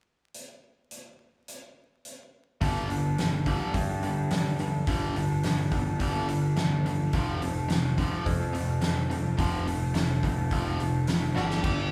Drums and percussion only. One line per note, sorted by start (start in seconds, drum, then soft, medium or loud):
0.34 closed hi-hat soft
0.91 closed hi-hat soft
1.48 closed hi-hat soft
2.05 closed hi-hat soft
2.61 kick medium
2.61 open hi-hat medium
2.90 open hi-hat soft
3.18 snare medium
3.18 open hi-hat medium
3.46 kick medium
3.46 open hi-hat soft
3.74 kick medium
3.74 open hi-hat medium
4.03 open hi-hat soft
4.31 snare medium
4.31 open hi-hat medium
4.59 open hi-hat soft
4.87 kick loud
4.87 open hi-hat medium
5.16 open hi-hat soft
5.43 snare medium
5.43 open hi-hat medium
5.71 kick medium
5.71 open hi-hat soft
6.00 kick medium
6.00 open hi-hat medium
6.28 open hi-hat soft
6.56 snare medium
6.56 open hi-hat medium
6.86 open hi-hat soft
7.13 kick medium
7.13 open hi-hat medium
7.42 open hi-hat soft
7.70 snare medium
7.70 open hi-hat medium
7.98 kick medium
7.98 open hi-hat soft
8.26 kick medium
8.26 open hi-hat medium
8.54 open hi-hat soft
8.81 snare medium
8.81 open hi-hat medium
9.11 open hi-hat soft
9.38 kick medium
9.38 open hi-hat medium
9.67 open hi-hat soft
9.95 snare medium
9.95 open hi-hat medium
10.23 kick medium
10.23 open hi-hat soft
10.51 kick medium
10.51 open hi-hat medium
10.80 open hi-hat soft
11.07 snare loud
11.07 open hi-hat medium
11.36 snare medium
11.50 snare medium
11.64 kick medium
11.64 crash medium